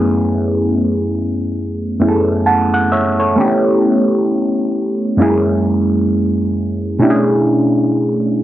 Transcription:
Already playing: F#2 A3 B3 C#4 E4 G#4
1.99 F#2 A3 B3 C#4 E4 G#4
2.08 A4
2.46 F#5 A5
2.74 F#5
2.92 C#5 E5
3.20 A4 C#5
3.35 A3 B3 C#4 D4
3.40 G4
3.45 E4
5.17 F#2 G#3 A#3 C#4 E4
5.22 G#4
6.99 B2 A3 C#4 D4 E4
7.03 G4
7.10 G#4

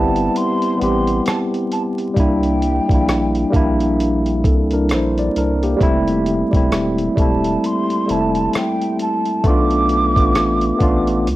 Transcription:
Already playing: G1 G3 B3 C4 E4 G4 A5
0.16 closed hi-hat
0.36 C6, closed hi-hat
0.62 closed hi-hat
0.77 G3 B3
0.81 A1 C4 G4 C6, closed hi-hat
1.07 closed hi-hat
1.26 A5, cross-stick, closed hi-hat
1.54 closed hi-hat
1.72 A5, closed hi-hat
1.98 closed hi-hat
2.14 C2 G3 A#3, kick, closed hi-hat
2.18 D4 E4 G5
2.43 closed hi-hat
2.62 closed hi-hat
2.88 A#1 G3 A#3 D4, kick, closed hi-hat
2.94 E4
3.09 cross-stick, closed hi-hat
3.35 closed hi-hat
3.50 A#1 G3 A#3 D4, kick, closed hi-hat
3.56 E4
3.80 closed hi-hat
4.00 closed hi-hat
4.26 closed hi-hat
4.44 C2 C4 A4, kick, closed hi-hat
4.71 D4 A#4, closed hi-hat
4.89 A#1, cross-stick, closed hi-hat
4.94 E4 C5
5.18 D5, closed hi-hat
5.36 C2 D4 A#4, closed hi-hat
5.63 A#3 G4, closed hi-hat
5.77 G3 A3 C4
5.81 F1 E4, kick, closed hi-hat
6.08 closed hi-hat
6.26 closed hi-hat
6.51 E1 G3 A3 C4, kick, closed hi-hat
6.57 E4
6.72 cross-stick, closed hi-hat
6.98 closed hi-hat
7.15 E1 G3 A3 C4 A5, kick, closed hi-hat
7.21 E4
7.44 closed hi-hat
7.64 C6, closed hi-hat
7.90 closed hi-hat
8.06 F1 G3 A3 C4, closed hi-hat
8.11 E4 A5
8.35 closed hi-hat
8.53 G5, cross-stick, closed hi-hat
8.81 closed hi-hat
8.99 A5, closed hi-hat
9.25 closed hi-hat
9.44 B1 A3 B3 D4 D6, kick, closed hi-hat
9.49 F4
9.71 closed hi-hat
9.89 closed hi-hat
10.16 A1 A3 B3 D4, kick, closed hi-hat
10.22 F4
10.35 cross-stick, closed hi-hat
10.61 closed hi-hat
10.77 A1 A3 B3 D4, kick, closed hi-hat
10.83 F4
11.07 closed hi-hat
11.27 C#2, closed hi-hat

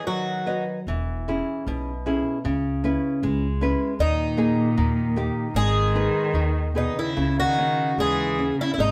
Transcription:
Already playing: B4 C#5 D#5
0.06 D#3 F#3 F#4
0.46 B4 C#5 D#5
0.87 E1 E3
1.28 C#4 E4 G#4
1.67 B1 B2
2.06 C#4 E4 G#4
2.44 C#2 C#3
2.84 C#4 E4 B4
3.23 C#2 G#3
3.61 C#4 E4 B4
3.99 D#2 A#2 D#3 D#4
4.37 A#3 D#4 G#4
4.77 D#2 D#3
5.16 A#3 D#4 G4
5.54 G#1 D#3 G#3 G#4
5.95 D#4 G#4 B4
6.34 D#2 D#3
6.75 B2 D#4 G#4 B4
6.97 C#3 E4
7.17 C#2 C#3
7.39 D#3 F#4
7.58 C#4
7.97 D#2 E3 G#3 G#4
8.39 C#4
8.57 C#3 E4
8.71 C#3 E4
8.78 G#1 C3 G#3 D#4

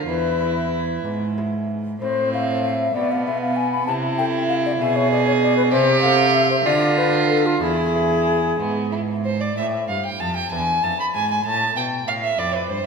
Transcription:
0.07 E2 E4 B4
0.40 B3 E4 G#4
1.05 G#2
1.37 B3 E4 G#4
2.01 A2 C4 C5
2.33 A3 E4 C5 F5
2.65 E5
2.95 B2 B3 D5
3.11 F5
3.27 G#3 E4 B4 E5
3.42 F5
3.56 G#5
3.72 B5
3.87 C3 E4 A5
4.18 A3 E4 A4 G5
4.49 F5
4.66 D5
4.80 B2 G#4 E5
4.96 C#5
5.12 B3 D4 G#4 D5
5.27 C#5
5.42 D5
5.57 B4
5.71 C3 G4 C5
6.01 A3 E4 A4 F5
6.34 E5
6.50 C5
6.65 D3 F4 D5
6.98 B3 F4 A4 B4
7.29 A4
7.46 F4
7.61 E2 E4 G#4
7.95 B3 E4 G#4
8.59 G#2 B3
8.91 B3 E4 G#4
9.25 C5
9.40 D5
9.57 A2 C4 E4 A4 E5
9.88 G2 F5
10.04 G5
10.19 F2 A5
10.35 G5
10.51 E2 D4 E4 B4 G#5
10.83 F2 A5
10.99 B5
11.14 G#2 G#5
11.30 G#5
11.45 A2 A5
11.77 B2 G5
12.07 A2 F5
12.23 E5
12.38 F2 C4 E4 A4 D5
12.55 B4
12.69 G2 C5

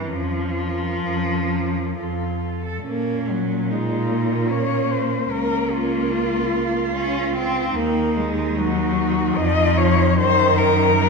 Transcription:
Already playing: E3
0.09 F2 F3 C#4
0.55 A#4
1.04 F2 C#4
1.50 A#4
1.97 F2 F4 A4
2.42 A4
2.66 A4
2.85 A#2 A#3 C#4
3.29 F#3
3.69 G#3 D#4 F4
4.11 A#3
4.49 C#4 C#5
4.91 C5
5.31 C#2 A#3 C#4 A#4
5.74 F4
6.13 F4
6.95 C#4
7.35 C4
7.72 D#2 A#3 D#4
8.16 G#3
8.56 F#3 F#4
9.36 F2 F3 D#5
9.77 C#5
10.18 F#2 D#3 D#4 C5
10.57 A#4
10.96 F#3

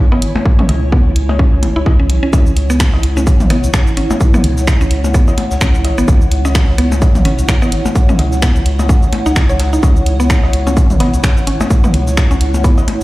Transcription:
Already playing: E4 C#5 G#5
0.12 B3, cowbell
0.22 G#1, closed hi-hat
0.36 percussion blips
0.46 kick
0.59 C#4, mid tom
0.69 C#2, closed hi-hat, cowbell
0.92 B3, kick
1.16 C#2, closed hi-hat
1.29 cowbell, percussion blips
1.39 C#4, kick
1.63 G#1, closed hi-hat, percussion blips
1.76 C#2 E4
1.86 kick, cowbell
2.00 C#4 F#5
2.10 B1, closed hi-hat
2.23 C#4
2.33 C#2 C#4, kick, closed hi-hat, cowbell, cabasa
2.47 cabasa
2.56 C#2, closed hi-hat
2.70 B3, snare, cabasa
2.80 finger snap, kick, snare, closed hi-hat, cabasa
2.93 snare, cowbell
3.03 C#2, closed hi-hat
3.17 C#4, percussion blips, cabasa
3.27 kick, closed hi-hat, cabasa
3.40 B1, closed hi-hat, mid tom, cabasa
3.50 G#1 B3, snare, closed hi-hat, cowbell
3.64 C#2, closed hi-hat, cabasa
3.74 finger snap, kick, snare, closed hi-hat, cabasa
3.87 cabasa
3.97 G#1 C#4, closed hi-hat
4.11 cowbell, percussion blips, cabasa
4.21 kick, closed hi-hat, cabasa
4.34 B3, mid tom, cabasa
4.44 C#2, closed hi-hat
4.57 snare, cabasa
4.67 finger snap, kick, snare, closed hi-hat, cowbell, cabasa
4.81 C#4, closed hi-hat, cabasa
4.91 C#2, closed hi-hat
5.04 percussion blips, cabasa
5.14 B3, kick, closed hi-hat, cabasa
5.28 cowbell, cabasa
5.38 closed hi-hat, percussion blips
5.51 C#2, snare, cabasa
5.61 C#4, finger snap, kick, snare, closed hi-hat, cabasa
5.75 cabasa
5.85 closed hi-hat, cowbell
5.98 G#1 B3, closed hi-hat, cabasa
6.08 C#2, kick, closed hi-hat, cabasa
6.22 cabasa
6.31 C#2, closed hi-hat
6.45 C#4, snare, cowbell, cabasa
6.55 finger snap, kick, snare, closed hi-hat, cabasa
6.68 snare
6.78 C#2 B3, closed hi-hat
6.92 percussion blips, cabasa
7.02 kick, closed hi-hat, cowbell, cabasa
7.15 B1, closed hi-hat, mid tom, cabasa
7.25 G#1 C#4, snare, closed hi-hat
7.39 C#2, closed hi-hat, cabasa
7.49 finger snap, kick, snare, closed hi-hat, cabasa
7.62 B3, cowbell, cabasa
7.72 G#1, closed hi-hat
7.86 percussion blips, cabasa
7.96 kick, closed hi-hat, cabasa
8.09 C#4, mid tom, cabasa
8.19 C#2, closed hi-hat, cowbell
8.32 snare, cabasa
8.42 B3, finger snap, kick, snare, closed hi-hat, cabasa
8.56 closed hi-hat, cabasa
8.66 C#2, closed hi-hat
8.79 cowbell, percussion blips, cabasa
8.89 C#4, kick, closed hi-hat, cabasa
9.03 cabasa
9.13 closed hi-hat, percussion blips
9.26 C#2 D#4, snare, cabasa
9.36 finger snap, kick, snare, closed hi-hat, cowbell, cabasa
9.49 C#2 C#5, cabasa
9.60 snare, closed hi-hat
9.73 D#4, snare, cabasa
9.83 C#2 C#4, kick, closed hi-hat, cowbell, cabasa
9.97 cabasa
10.06 C#2, closed hi-hat
10.20 B3, snare, cabasa
10.30 finger snap, kick, snare, closed hi-hat, cabasa
10.43 snare, cowbell
10.53 C#2, closed hi-hat
10.67 C#4, percussion blips, cabasa
10.77 kick, closed hi-hat, cabasa
10.90 B1, closed hi-hat, mid tom, cabasa
11.00 G#1 B3, snare, closed hi-hat, cowbell
11.14 C#2, closed hi-hat, cabasa
11.24 finger snap, kick, snare, closed hi-hat, cabasa
11.37 cabasa
11.47 G#1 C#4, closed hi-hat
11.61 cowbell, percussion blips, cabasa
11.70 kick, closed hi-hat, cabasa
11.84 B3, mid tom, cabasa
11.94 C#2, closed hi-hat
12.07 snare, cabasa
12.17 finger snap, kick, snare, closed hi-hat, cowbell, cabasa
12.31 C#4, closed hi-hat, cabasa
12.41 C#2, closed hi-hat
12.54 percussion blips, cabasa
12.64 B3, kick, closed hi-hat, cabasa
12.78 cowbell, cabasa
12.88 closed hi-hat, percussion blips

